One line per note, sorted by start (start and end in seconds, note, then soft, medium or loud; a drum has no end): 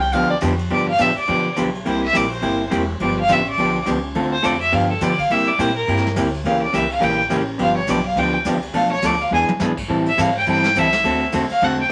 0.00 0.13 C2 loud
0.00 0.14 G5 loud
0.00 ride soft
0.12 0.41 D2 medium
0.12 0.33 D3 medium
0.12 0.33 F3 medium
0.12 0.33 B3 medium
0.12 0.34 D4 medium
0.12 0.34 G4 medium
0.12 0.30 F5 medium
0.12 ride medium
0.30 0.37 D5 loud
0.41 0.70 F2 loud
0.41 0.53 D3 medium
0.41 0.53 F3 medium
0.41 0.53 B3 medium
0.41 0.53 D4 medium
0.41 0.53 G4 medium
0.41 hi-hat pedal medium
0.41 ride medium
0.59 ride medium
0.70 0.98 G2 medium
0.70 0.90 D3 medium
0.70 0.90 F3 medium
0.70 0.91 B3 medium
0.70 0.90 D4 medium
0.70 0.90 G4 medium
0.70 0.88 D5 medium
0.70 ride medium
0.89 1.03 F5 loud
0.98 1.16 A2 medium
0.98 1.10 D3 medium
0.98 1.10 F3 medium
0.98 1.10 B3 medium
0.98 1.10 D4 medium
0.98 1.11 G4 medium
0.98 1.17 E5 medium
0.98 hi-hat pedal medium
0.98 ride medium
1.16 1.54 D5 medium
1.16 muted upright bass stroke soft
1.16 ride soft
1.27 1.56 B2 medium
1.27 1.47 D3 medium
1.27 1.48 F3 medium
1.27 1.48 B3 medium
1.27 1.48 D4 medium
1.27 1.48 G4 medium
1.27 ride medium
1.56 1.85 B1 medium
1.56 1.68 D3 medium
1.56 1.68 F3 medium
1.56 1.68 B3 medium
1.56 1.68 D4 medium
1.56 1.68 G4 medium
1.56 hi-hat pedal medium
1.56 ride medium
1.75 ride soft
1.85 2.13 C2 medium
1.85 2.05 C3 medium
1.85 2.05 G3 medium
1.85 2.05 A#3 medium
1.85 2.05 E4 medium
1.85 2.06 G4 medium
1.85 ride medium
1.89 2.03 C5 medium
2.04 2.18 E5 loud
2.13 2.42 A#1 medium
2.13 2.24 C3 medium
2.13 2.25 G3 medium
2.13 2.25 A#3 medium
2.13 2.25 E4 medium
2.13 2.25 G4 medium
2.13 hi-hat pedal medium
2.13 ride medium
2.17 2.32 D5 medium
2.31 2.69 C5 medium
2.31 ride soft
2.41 2.71 G1 medium
2.41 2.62 C3 medium
2.41 2.62 G3 medium
2.41 2.62 A#3 medium
2.41 2.62 E4 medium
2.41 2.63 G4 medium
2.41 ride medium
2.70 3.00 E1 loud
2.70 2.82 C3 medium
2.70 2.82 G3 medium
2.70 2.82 A#3 medium
2.70 2.82 E4 medium
2.70 2.83 G4 medium
2.70 hi-hat pedal medium
2.70 ride medium
3.00 3.28 G1 medium
3.00 3.20 D3 medium
3.00 3.20 F3 medium
3.00 3.21 B3 medium
3.00 3.21 D4 medium
3.00 3.21 G4 medium
3.00 3.17 D5 medium
3.00 ride medium
3.20 3.34 F5 loud
3.28 3.57 A1 loud
3.28 3.40 D3 medium
3.28 3.40 F3 medium
3.28 3.40 B3 medium
3.28 3.40 D4 medium
3.28 3.41 G4 medium
3.28 hi-hat pedal medium
3.28 ride medium
3.32 3.48 E5 medium
3.46 3.85 D5 loud
3.46 ride soft
3.58 3.85 B1 medium
3.58 3.78 D3 medium
3.58 3.78 F3 medium
3.58 3.78 B3 medium
3.58 3.78 D4 medium
3.58 3.78 G4 medium
3.58 ride medium
3.86 4.14 C#2 medium
3.86 3.97 D3 medium
3.86 3.97 F3 medium
3.86 3.98 B3 medium
3.86 3.98 D4 medium
3.86 3.98 G4 medium
3.86 hi-hat pedal medium
3.86 ride medium
4.15 4.43 D2 medium
4.15 4.35 D3 medium
4.15 4.35 A3 medium
4.15 4.35 C4 medium
4.15 4.35 F4 medium
4.15 4.35 A4 medium
4.15 ride medium
4.33 4.47 C5 medium
4.43 4.72 F2 loud
4.43 4.54 D3 medium
4.43 4.54 A3 medium
4.43 4.54 C4 medium
4.43 4.54 F4 medium
4.43 4.54 A4 medium
4.43 4.61 D5 medium
4.43 hi-hat pedal medium
4.43 ride medium
4.61 4.76 E5 medium
4.61 ride soft
4.72 5.00 G2 medium
4.72 4.92 D3 medium
4.72 4.92 F3 medium
4.72 4.92 B3 medium
4.72 4.92 D4 medium
4.72 4.92 G4 medium
4.72 4.90 F5 medium
4.72 ride medium
4.91 5.05 A4 medium
5.01 5.29 D3 medium
5.01 5.12 D3 medium
5.01 5.12 F3 medium
5.01 5.13 B3 medium
5.01 5.13 D4 medium
5.01 5.13 G4 medium
5.01 5.21 D5 medium
5.01 hi-hat pedal medium
5.01 ride medium
5.19 5.33 F5 loud
5.19 kick soft
5.19 ride soft
5.30 5.58 C3 medium
5.30 5.50 C3 medium
5.30 5.50 G3 medium
5.30 5.50 A#3 medium
5.30 5.50 E4 medium
5.30 5.51 G4 medium
5.30 5.49 E5 medium
5.30 ride medium
5.48 5.63 D5 medium
5.58 5.86 A#2 loud
5.58 5.70 C3 medium
5.58 5.70 G3 medium
5.58 5.70 A#3 medium
5.58 5.70 E4 medium
5.58 5.70 G4 medium
5.58 5.76 C5 medium
5.58 hi-hat pedal medium
5.58 ride medium
5.76 6.03 A#4 medium
5.88 6.15 G2 medium
5.88 6.07 C3 medium
5.88 6.07 G3 medium
5.88 6.08 A#3 medium
5.88 6.08 E4 medium
5.88 6.08 G4 medium
5.88 ride medium
5.97 snare soft
6.07 snare soft
6.16 6.44 D2 loud
6.16 6.27 C3 medium
6.16 6.27 G3 medium
6.16 6.27 A#3 medium
6.16 6.27 E4 medium
6.16 6.27 G4 medium
6.16 hi-hat pedal medium
6.16 ride medium
6.34 ride soft
6.44 6.72 C#2 medium
6.44 6.65 C#3 medium
6.44 6.65 E3 medium
6.44 6.65 A#3 medium
6.44 6.65 C#4 medium
6.44 6.65 G4 medium
6.44 6.62 F5 medium
6.44 ride medium
6.62 6.77 D5 medium
6.73 7.01 C2 medium
6.73 6.84 C#3 medium
6.73 6.84 E3 medium
6.73 6.84 A#3 medium
6.73 6.84 C#4 medium
6.73 6.85 G4 medium
6.73 6.92 E5 loud
6.73 hi-hat pedal medium
6.73 ride medium
6.91 7.05 F5 medium
6.91 ride soft
7.00 7.30 A#1 medium
7.00 7.20 C#3 medium
7.00 7.21 E3 medium
7.00 7.21 A#3 medium
7.00 7.21 C#4 medium
7.00 7.21 G4 medium
7.00 7.20 G5 loud
7.00 ride medium
7.30 7.59 A1 medium
7.30 7.41 C#3 medium
7.30 7.41 E3 medium
7.30 7.41 A#3 medium
7.30 7.42 C#4 medium
7.30 7.42 G4 medium
7.30 hi-hat pedal soft
7.30 ride medium
7.58 7.87 G1 medium
7.58 7.78 D3 medium
7.58 7.79 F3 medium
7.58 7.79 B3 medium
7.58 7.79 D4 medium
7.58 7.79 G4 medium
7.58 7.76 F5 medium
7.58 ride medium
7.77 7.91 C#5 medium
7.87 8.15 B1 medium
7.87 7.99 D3 medium
7.87 7.99 F3 medium
7.87 7.99 B3 medium
7.87 7.99 D4 medium
7.87 8.00 G4 medium
7.87 8.06 D5 medium
7.87 hi-hat pedal medium
7.87 ride medium
8.06 8.20 F5 medium
8.16 8.44 D2 medium
8.16 8.36 D3 medium
8.16 8.37 F3 medium
8.16 8.37 B3 medium
8.16 8.37 D4 medium
8.16 8.37 G4 medium
8.16 8.35 G5 loud
8.16 ride medium
8.45 8.73 C2 medium
8.45 8.56 D3 medium
8.45 8.57 F3 medium
8.45 8.57 B3 medium
8.45 8.57 D4 medium
8.45 8.57 G4 medium
8.45 hi-hat pedal medium
8.45 ride medium
8.63 ride medium
8.73 9.02 B1 medium
8.73 8.93 B2 medium
8.73 8.93 F3 medium
8.73 8.94 A3 medium
8.73 8.94 D4 medium
8.73 8.94 A4 medium
8.73 8.91 F5 medium
8.73 ride medium
8.92 9.08 C#5 medium
9.02 9.30 D2 medium
9.02 9.14 B2 medium
9.02 9.14 F3 medium
9.02 9.14 A3 medium
9.02 9.15 D4 medium
9.02 9.15 A4 medium
9.02 hi-hat pedal medium
9.02 ride medium
9.06 9.23 D5 medium
9.20 9.32 F5 loud
9.20 ride soft
9.31 9.47 E2 medium
9.31 9.51 E3 medium
9.31 9.51 B3 medium
9.31 9.52 D4 medium
9.31 9.52 G#4 medium
9.31 9.44 G#5 loud
9.49 high tom medium
9.60 9.88 G#2 medium
9.60 9.72 E3 medium
9.60 9.72 B3 medium
9.60 9.72 D4 medium
9.60 9.72 G#4 medium
9.60 snare medium
9.60 hi-hat pedal medium
9.77 kick medium
9.77 crash medium
9.88 10.17 A2 medium
9.88 10.08 E3 medium
9.88 10.09 G3 medium
9.88 10.09 C4 medium
9.88 10.09 E4 medium
9.88 10.09 A4 medium
10.06 10.22 E5 medium
10.06 ride medium
10.18 10.45 G#2 medium
10.18 10.29 E3 medium
10.18 10.29 G3 medium
10.18 10.29 C4 medium
10.18 10.29 E4 medium
10.18 10.29 A4 medium
10.18 10.36 F5 medium
10.18 hi-hat pedal medium
10.18 ride medium
10.38 10.47 G5 medium
10.46 10.74 G2 medium
10.46 10.66 E3 medium
10.46 10.66 G3 medium
10.46 10.67 C4 medium
10.46 10.67 E4 medium
10.46 10.67 A4 medium
10.46 ride medium
10.51 10.80 G5 medium
10.64 snare medium
10.75 11.03 C2 medium
10.75 10.87 E3 medium
10.75 10.87 G3 medium
10.75 10.87 C4 medium
10.75 10.87 E4 medium
10.75 10.87 A4 medium
10.75 11.23 E5 loud
10.75 hi-hat pedal medium
10.75 ride medium
10.93 snare medium
10.93 ride medium
11.04 11.31 D2 medium
11.04 11.23 D3 medium
11.04 11.23 A3 medium
11.04 11.24 C4 medium
11.04 11.24 F#4 medium
11.04 11.24 A4 medium
11.04 ride medium
11.32 11.49 E2 loud
11.32 11.43 D3 medium
11.32 11.44 A3 medium
11.32 11.44 C4 medium
11.32 11.44 F#4 medium
11.32 11.44 A4 medium
11.32 hi-hat pedal medium
11.32 ride medium
11.49 11.66 F5 loud
11.49 muted upright bass stroke soft
11.49 ride soft
11.61 11.89 E1 medium
11.61 11.81 D3 medium
11.61 11.81 A3 medium
11.61 11.82 C4 medium
11.61 11.82 F#4 medium
11.61 11.82 A4 medium
11.61 11.80 F#5 medium
11.61 ride medium
11.81 11.90 G5 medium